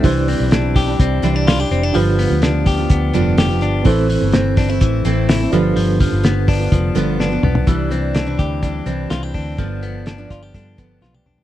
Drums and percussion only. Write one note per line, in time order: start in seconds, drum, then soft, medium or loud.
0.04 kick loud
0.04 hi-hat pedal medium
0.04 open hi-hat medium
0.28 hi-hat pedal medium
0.28 open hi-hat medium
0.51 snare loud
0.51 hi-hat pedal medium
0.51 open hi-hat medium
0.76 kick medium
0.76 snare soft
0.76 hi-hat pedal medium
0.76 open hi-hat medium
0.99 kick medium
0.99 hi-hat pedal medium
0.99 open hi-hat loud
1.23 hi-hat pedal medium
1.23 open hi-hat medium
1.47 snare loud
1.47 hi-hat pedal medium
1.47 open hi-hat loud
1.71 hi-hat pedal medium
1.71 open hi-hat medium
1.95 hi-hat pedal medium
1.95 open hi-hat medium
2.19 hi-hat pedal medium
2.19 open hi-hat medium
2.42 snare loud
2.42 hi-hat pedal medium
2.42 open hi-hat medium
2.66 kick medium
2.66 hi-hat pedal medium
2.66 open hi-hat medium
2.90 kick medium
2.90 hi-hat pedal medium
2.90 open hi-hat medium
3.13 hi-hat pedal medium
3.13 open hi-hat medium
3.38 snare loud
3.38 hi-hat pedal medium
3.38 open hi-hat loud
3.61 hi-hat pedal medium
3.61 open hi-hat medium
3.85 kick loud
3.85 hi-hat pedal medium
3.85 open hi-hat medium
4.09 hi-hat pedal medium
4.09 open hi-hat medium
4.33 snare loud
4.33 hi-hat pedal medium
4.33 open hi-hat medium
4.57 kick medium
4.57 snare soft
4.57 hi-hat pedal medium
4.57 open hi-hat medium
4.81 kick loud
4.81 hi-hat pedal medium
4.81 open hi-hat medium
5.05 hi-hat pedal medium
5.05 open hi-hat medium
5.29 snare loud
5.29 hi-hat pedal medium
5.29 open hi-hat loud
5.53 hi-hat pedal medium
5.53 open hi-hat medium
5.77 hi-hat pedal medium
5.77 open hi-hat medium
6.00 kick medium
6.00 hi-hat pedal medium
6.00 open hi-hat medium
6.24 snare loud
6.24 hi-hat pedal medium
6.24 open hi-hat loud
6.48 kick loud
6.48 hi-hat pedal medium
6.48 open hi-hat medium
6.72 kick loud
6.72 hi-hat pedal medium
6.72 open hi-hat medium
6.96 hi-hat pedal medium
6.96 open hi-hat medium
7.20 snare medium
7.43 mid tom medium
7.55 floor tom loud
7.67 kick medium
7.67 closed hi-hat medium
7.92 closed hi-hat medium
8.15 snare medium
8.15 closed hi-hat medium
8.39 kick medium
8.39 closed hi-hat medium
8.63 kick medium
8.63 closed hi-hat medium
8.87 closed hi-hat medium
9.10 snare loud
9.10 closed hi-hat medium
9.34 kick medium
9.34 open hi-hat medium
9.58 kick medium
9.58 closed hi-hat medium
9.83 closed hi-hat medium
10.06 snare medium
10.06 closed hi-hat medium
10.30 kick medium
10.30 snare soft
10.30 closed hi-hat medium
10.54 kick medium
10.54 closed hi-hat medium
10.78 kick medium
10.78 closed hi-hat medium
11.03 snare soft
11.14 high tom medium
11.26 mid tom medium
11.38 floor tom medium